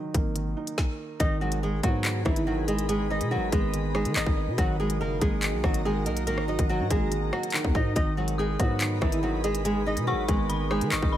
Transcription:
Already playing: D#3 F#3 A#3 D#4 D#5
0.14 G#1 A#3, kick, closed hi-hat
0.35 D#3, closed hi-hat
0.57 D#4
0.67 closed hi-hat
0.78 kick, snare
1.20 G#1 D#3 D#4 G#4 B4 D#5 B5, kick, closed hi-hat
1.41 F#3 G#3 F#4
1.52 closed hi-hat
1.62 D#3 G#3 G#4
1.83 G#2 F#3 B3 F#4, kick, closed hi-hat
2.05 D#3, clap, closed hi-hat
2.25 G#1 E3 D#4 E4, kick, cross-stick
2.36 closed hi-hat
2.47 D#3 F#3 F#4
2.68 G#3 G#4 D#5, closed hi-hat
2.79 closed hi-hat
2.89 D#3 G#3 G#4, closed hi-hat
3.10 G#3 D#4 D#5
3.21 B2, closed hi-hat
3.31 D#3 F#3 F#4
3.37 G#1
3.52 G#1 G#3 B3 G#4, kick, closed hi-hat
3.73 D#3, closed hi-hat
3.94 G#3 D#4 G#4, cross-stick
4.05 D#3, closed hi-hat
4.16 G#1 D#3 D#4 D#5, clap, closed hi-hat
4.26 G#1, kick
4.37 D#5
4.48 B2
4.58 G#1 D#3 F#3 F#4 A#4 A#5, kick, closed hi-hat
4.79 F#3 G#3 G#4
4.90 closed hi-hat
5.00 F#1 D#3 A#3 A#4
5.21 G#1 G#3 A#3 G#4, kick, closed hi-hat
5.42 D#3, clap, closed hi-hat
5.53 B1
5.64 G#1 F#3 D#4 F#4, kick, cross-stick
5.74 closed hi-hat
5.85 D#3 G#3 G#4
6.06 B1 A#3 A#4 D#5, closed hi-hat
6.17 closed hi-hat
6.27 D#3 A#3 A#4, closed hi-hat
6.32 G#1
6.38 cross-stick
6.48 F#3 D#4 D#5
6.59 G#1, kick, closed hi-hat
6.69 D#3 F#3 F#4
6.80 G#2
6.90 G#1 G#3 A#3 G#4, kick, closed hi-hat
7.11 D#3, closed hi-hat
7.33 F#3 D#4 F#4, cross-stick
7.43 closed hi-hat
7.50 D#3, clap, closed hi-hat
7.57 closed hi-hat
7.64 D#2, kick
7.75 G#2 D#4 D#5, kick
7.96 G#1 D#3 D#4 G#4 B4 D#5 B5, kick, closed hi-hat
8.17 F#3 G#3 F#4
8.28 closed hi-hat
8.38 D#3 G#3 G#4 D#6
8.59 G#2 F#3 B3 F#4, kick, closed hi-hat
8.81 D#3, clap, closed hi-hat
9.01 G#1 E3 D#4 E4, kick, cross-stick
9.12 closed hi-hat
9.23 D#3 F#3 F#4
9.44 G#3 G#4 D#5, closed hi-hat
9.55 closed hi-hat
9.65 D#3 G#3 G#4, closed hi-hat
9.86 G#3 D#4 D#5
9.97 B2, closed hi-hat
10.07 D#3 F#3 F#4 C#6
10.13 G#1
10.28 G#1 G#3 B3 G#4, kick, closed hi-hat
10.49 D#3 B5, closed hi-hat
10.70 G#3 D#4 G#4 D#6, cross-stick
10.81 D#3, closed hi-hat
10.92 G#1 D#3 D#4 D#5 C#6, clap, closed hi-hat
11.02 G#1, kick
11.12 D#5 B5

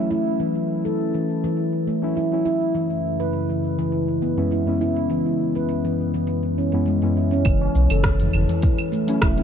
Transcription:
Already playing: F#3 A3 C#4 F#4 A4
0.00 E4
0.11 E4
0.26 open hi-hat
0.40 E3 E4, open hi-hat
0.85 A4, open hi-hat
0.98 open hi-hat
1.14 E3, open hi-hat
1.44 E3, open hi-hat
1.57 open hi-hat
1.73 open hi-hat
1.87 A3
2.02 F#3 A3 C#4 E4, open hi-hat
2.16 E4, open hi-hat
2.31 F#3 A3 C#4 E4, open hi-hat
2.45 E4
2.61 open hi-hat
2.74 F#2 C#3 E3 G#3, open hi-hat
3.20 B4, open hi-hat
3.33 open hi-hat
3.49 E3, open hi-hat
3.79 E3, open hi-hat
3.92 open hi-hat
4.08 open hi-hat
4.22 B3
4.36 F#2 G#3 B3 C#4 E4, open hi-hat
4.51 E4, open hi-hat
4.65 F#2 G#3 B3 C#4 E4, open hi-hat
4.81 E4
4.96 open hi-hat
5.10 E3 B3, open hi-hat
5.55 B4, open hi-hat
5.69 open hi-hat
5.84 E3, open hi-hat
6.14 E3, open hi-hat
6.27 open hi-hat
6.43 open hi-hat
6.58 C#4
6.72 F#2 G#3 B3 C#4 E4, open hi-hat
6.86 G#3, open hi-hat
7.02 F#2 G#3 B3 C#4 E4, open hi-hat
7.17 E4
7.31 C#4, open hi-hat
7.45 F#1 E3, kick, open hi-hat, claves, shaker
7.61 tabla na
7.75 B1, shaker
7.90 F#1 A4, open hi-hat, claves, shaker
8.04 kick, cross-stick, open hi-hat, shaker
8.20 E3, open hi-hat, tabla ge
8.33 F#1, tabla ge, claves, shaker
8.49 E3, open hi-hat, tabla tin, shaker
8.62 kick, open hi-hat, shaker
8.78 open hi-hat, claves
8.92 A3, shaker
9.07 F#3 A3 C#4 E4, open hi-hat, tabla na, shaker
9.22 E1 E4, kick, cross-stick, open hi-hat, claves, shaker
9.36 F#3 A3 C#4 E4, open hi-hat

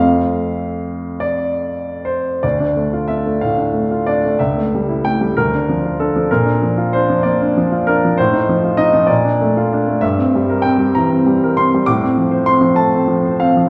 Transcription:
Already playing: F2 A3 C4 F4 F5
1.20 D5
2.05 C5
2.43 D2 D5
2.60 D4
2.76 A3
2.93 F4
3.08 D4 E5
3.26 A3
3.41 A2 F5
3.58 D4
3.74 A3
3.91 F4
4.07 D4 D5
4.25 A3
4.39 C#2 E5
4.58 A3
4.75 G3
4.89 E4
5.05 A3 G5
5.21 G3
5.37 D2 A#4
5.54 D4
5.69 F3
5.85 F4
6.00 D4 A4
6.16 F3
6.31 A#2 A#4
6.46 D4
6.62 F3
6.78 F4
6.93 D4 C5
7.10 F3
7.23 A#3 D5
7.42 D4
7.57 F3
7.72 F4
7.87 D4 A#4
8.05 F3
8.18 A2 C5
8.33 D#4
8.49 F3
8.64 F4
8.77 D#4 D#5
8.93 F3
9.07 A#2 D5
9.25 D4
9.41 A3
9.57 F4
9.73 D4
9.88 A3
10.01 G2 E5
10.18 C4
10.35 G3
10.50 A#4
10.62 C4 G5
10.78 G3
10.95 E3 A#5
11.12 C4
11.27 G3
11.44 A#4
11.57 C4 C6
11.74 G3
11.86 A2 D6
12.03 C4
12.18 F3
12.31 C5
12.46 C4 C6
12.61 F3
12.76 A3 A5
12.94 C4
13.08 F3
13.25 C5
13.40 C4 F5
13.57 F3

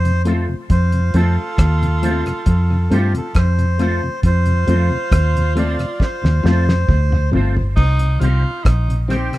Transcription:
Already playing: F2 D#4 C5
0.05 F2 C3, closed hi-hat
0.25 F3 A3 C4 F4 A4 C5, closed hi-hat
0.49 F2 C3
0.70 F2 F4 C5, kick, closed hi-hat
0.92 F2 C3, closed hi-hat
1.14 F2 F3 A3 C4 F4 A4 C5, closed hi-hat
1.58 D#2, kick, cross-stick, closed hi-hat
1.82 F2 C3, closed hi-hat
2.02 F3 A3 C4 F4 A4 C5, closed hi-hat
2.26 F2 C3, cross-stick, closed hi-hat
2.46 F2 A4, kick, closed hi-hat
2.70 F2 C3
2.90 G2 F3 A3 C4 F4 G4 A4 C5, closed hi-hat
3.14 F2 C3 C4 F4 A4, muted clean electric guitar stroke, closed hi-hat
3.35 F2 C5, kick, cross-stick, closed hi-hat
3.59 F2 C3, closed hi-hat
3.78 F3 A3 C4 F4 A4 C5, closed hi-hat
4.03 F2 C3
4.23 F2 F4 C5, kick, closed hi-hat
4.46 F2 C3, closed hi-hat
4.67 F2 F3 A3 C4 F4 A4 C5, closed hi-hat
4.90 F2 C3
5.12 D#2, kick, cross-stick, closed hi-hat
5.35 F2 C3, closed hi-hat
5.55 F3 A3 C4 F4 A4 C5 D5, closed hi-hat
5.79 F2 C3, cross-stick, closed hi-hat
6.00 C5, kick, snare
6.23 D#2 F2 C3, snare
6.43 F2 F3 A3 C4 F4 A4 C5, snare
6.67 F2 C3 C4 F4, muted clean electric guitar stroke, snare
6.89 D2, kick, mid tom
7.11 F2 C3, mid tom
7.32 G1 F3 A3 C4 F4 A4 C5, floor tom
7.55 F2 C3, floor tom
7.76 C2 D#4, kick, crash
7.99 C3, closed hi-hat
8.20 C2 D#3 G3 C4 D#4 F4 G4 C5, closed hi-hat
8.43 C3
8.64 A#1 D#4, kick, cross-stick, closed hi-hat
8.88 C3, closed hi-hat
9.08 D#3 G3 C4 D#4 G4 C5, cross-stick, closed hi-hat
9.13 G4
9.32 C3, cross-stick, closed hi-hat

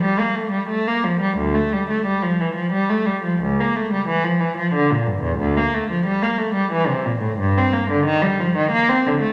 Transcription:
0.03 G3
0.19 A#3
0.36 A3
0.52 G3
0.69 A3
0.87 A#3
1.04 F3
1.21 G3
1.38 D2
1.55 A3
1.73 G3
1.90 A3
2.06 G3
2.23 F3
2.40 E3
2.55 F3
2.73 G3
2.89 A3
3.06 G3
3.24 F3
3.42 C#2
3.60 A#3
3.76 A3
3.93 G3
4.08 E3
4.24 F3
4.40 E3
4.58 F3
4.74 D3
4.91 A#2
5.06 G2
5.22 E2
5.38 D2
5.57 A#3
5.74 A3
5.90 F3
6.06 G3
6.23 A#3
6.38 A3
6.55 G3
6.72 E3
6.87 C3
7.05 A#2
7.21 A2
7.39 G2
7.58 C4
7.73 A#3
7.91 D3
8.05 D#3
8.22 G3
8.39 F3
8.57 D#3
8.72 A#3
8.89 C4
9.06 D3
9.21 A3

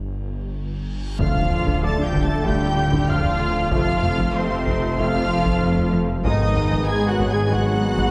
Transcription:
Already playing: G1, reverse cymbal
1.19 D1 D2 D3 F3 A3 F4 D5 F5 F6, taiko, impact
1.51 F3, taiko low-mid
1.66 D3, taiko
1.82 F3 A3 A4 A5 D6 A6
1.99 D4 G4
2.04 G3 G5 G6
2.14 D3, taiko
2.25 A3 A4 A5 A6
2.30 D4
2.44 D3 G3 A3 G4 G5 G6, taiko
2.77 D4
2.92 D3, taiko
3.08 F3 A3 F4 F5 F6, taiko low-mid
3.25 taiko low-mid
3.40 D3
3.71 F1 F2 C3 F3 A3 F4 A4 C5 F5 F6, taiko
4.03 A3, taiko low-mid
4.19 F3, taiko
4.34 C3 A3 C4 C5 C6
4.51 F4
4.66 F3, taiko
4.82 F4
4.98 C3 F3 A3 F4 F5 F6, taiko
5.29 F4
5.45 F3, taiko
5.61 C4, taiko low-mid
5.78 taiko low-mid
5.93 F3
6.24 G#1 G#2 B2 D#3 G#3 B3 D#4 G#4 B4 D#5 D#6, taiko
6.56 B3, taiko low-mid
6.71 G#3, taiko
6.87 G#3 B3 G#4 G#5 G#6
7.03 G#4
7.09 F#3 F#4 F#5 F#6
7.19 G#3, taiko
7.30 G#3 G#4 G#5 G#6
7.34 G#4
7.50 B2 F#3 G#3 F#4 F#5 F#6, taiko
7.82 G#4
7.98 G#3, taiko

